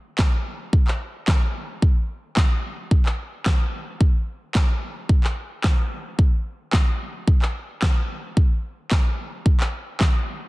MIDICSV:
0, 0, Header, 1, 2, 480
1, 0, Start_track
1, 0, Tempo, 545455
1, 1605, Time_signature, 4, 2, 24, 8
1, 9225, End_track
2, 0, Start_track
2, 0, Title_t, "Drums"
2, 162, Note_on_c, 9, 39, 96
2, 165, Note_on_c, 9, 36, 114
2, 172, Note_on_c, 9, 38, 77
2, 250, Note_off_c, 9, 39, 0
2, 253, Note_off_c, 9, 36, 0
2, 260, Note_off_c, 9, 38, 0
2, 643, Note_on_c, 9, 36, 112
2, 731, Note_off_c, 9, 36, 0
2, 770, Note_on_c, 9, 39, 60
2, 858, Note_off_c, 9, 39, 0
2, 1125, Note_on_c, 9, 36, 118
2, 1125, Note_on_c, 9, 39, 108
2, 1135, Note_on_c, 9, 38, 88
2, 1213, Note_off_c, 9, 36, 0
2, 1213, Note_off_c, 9, 39, 0
2, 1223, Note_off_c, 9, 38, 0
2, 1605, Note_on_c, 9, 36, 112
2, 1693, Note_off_c, 9, 36, 0
2, 2083, Note_on_c, 9, 39, 102
2, 2086, Note_on_c, 9, 36, 111
2, 2093, Note_on_c, 9, 38, 80
2, 2171, Note_off_c, 9, 39, 0
2, 2174, Note_off_c, 9, 36, 0
2, 2181, Note_off_c, 9, 38, 0
2, 2563, Note_on_c, 9, 36, 111
2, 2651, Note_off_c, 9, 36, 0
2, 2690, Note_on_c, 9, 39, 61
2, 2778, Note_off_c, 9, 39, 0
2, 3045, Note_on_c, 9, 39, 112
2, 3046, Note_on_c, 9, 36, 117
2, 3055, Note_on_c, 9, 38, 91
2, 3133, Note_off_c, 9, 39, 0
2, 3134, Note_off_c, 9, 36, 0
2, 3143, Note_off_c, 9, 38, 0
2, 3525, Note_on_c, 9, 36, 111
2, 3613, Note_off_c, 9, 36, 0
2, 4003, Note_on_c, 9, 39, 99
2, 4005, Note_on_c, 9, 36, 116
2, 4013, Note_on_c, 9, 38, 81
2, 4091, Note_off_c, 9, 39, 0
2, 4093, Note_off_c, 9, 36, 0
2, 4101, Note_off_c, 9, 38, 0
2, 4482, Note_on_c, 9, 36, 115
2, 4570, Note_off_c, 9, 36, 0
2, 4609, Note_on_c, 9, 39, 64
2, 4697, Note_off_c, 9, 39, 0
2, 4964, Note_on_c, 9, 39, 110
2, 4965, Note_on_c, 9, 36, 119
2, 4974, Note_on_c, 9, 38, 89
2, 5052, Note_off_c, 9, 39, 0
2, 5053, Note_off_c, 9, 36, 0
2, 5062, Note_off_c, 9, 38, 0
2, 5445, Note_on_c, 9, 36, 109
2, 5533, Note_off_c, 9, 36, 0
2, 5923, Note_on_c, 9, 39, 98
2, 5925, Note_on_c, 9, 36, 109
2, 5933, Note_on_c, 9, 38, 83
2, 6011, Note_off_c, 9, 39, 0
2, 6013, Note_off_c, 9, 36, 0
2, 6021, Note_off_c, 9, 38, 0
2, 6402, Note_on_c, 9, 36, 110
2, 6490, Note_off_c, 9, 36, 0
2, 6530, Note_on_c, 9, 39, 62
2, 6618, Note_off_c, 9, 39, 0
2, 6885, Note_on_c, 9, 36, 119
2, 6885, Note_on_c, 9, 39, 113
2, 6895, Note_on_c, 9, 38, 89
2, 6973, Note_off_c, 9, 36, 0
2, 6973, Note_off_c, 9, 39, 0
2, 6983, Note_off_c, 9, 38, 0
2, 7365, Note_on_c, 9, 36, 115
2, 7453, Note_off_c, 9, 36, 0
2, 7843, Note_on_c, 9, 39, 97
2, 7845, Note_on_c, 9, 36, 118
2, 7852, Note_on_c, 9, 38, 80
2, 7931, Note_off_c, 9, 39, 0
2, 7933, Note_off_c, 9, 36, 0
2, 7940, Note_off_c, 9, 38, 0
2, 8323, Note_on_c, 9, 36, 114
2, 8411, Note_off_c, 9, 36, 0
2, 8450, Note_on_c, 9, 39, 65
2, 8538, Note_off_c, 9, 39, 0
2, 8805, Note_on_c, 9, 36, 121
2, 8805, Note_on_c, 9, 39, 115
2, 8815, Note_on_c, 9, 38, 92
2, 8893, Note_off_c, 9, 36, 0
2, 8893, Note_off_c, 9, 39, 0
2, 8903, Note_off_c, 9, 38, 0
2, 9225, End_track
0, 0, End_of_file